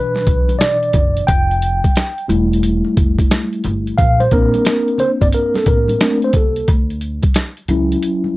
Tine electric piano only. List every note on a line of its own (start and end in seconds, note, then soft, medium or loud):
0.00 1.24 B2 medium
0.00 1.24 E3 medium
0.00 1.25 D4 medium
0.00 0.56 B4 loud
0.59 1.23 D5 loud
1.27 2.25 G5 loud
2.28 3.94 G3 medium
2.28 3.94 A3 medium
2.28 3.94 E4 medium
3.98 4.21 F5 loud
4.20 4.32 C5 medium
4.33 6.64 A#3 medium
4.33 6.01 C4 medium
4.33 6.01 D4 medium
4.33 5.02 A#4 loud
5.00 5.10 C5 loud
5.21 5.27 D5 medium
5.34 5.54 A#4 medium
5.56 5.68 A4 medium
5.68 6.19 A#4 loud
6.01 6.31 A3 medium
6.01 6.32 C4 soft
6.01 6.32 D4 medium
6.24 6.34 C5 medium
6.36 6.67 A4 medium
7.69 8.37 F#3 medium
7.69 8.37 C#4 medium
7.69 8.37 E4 medium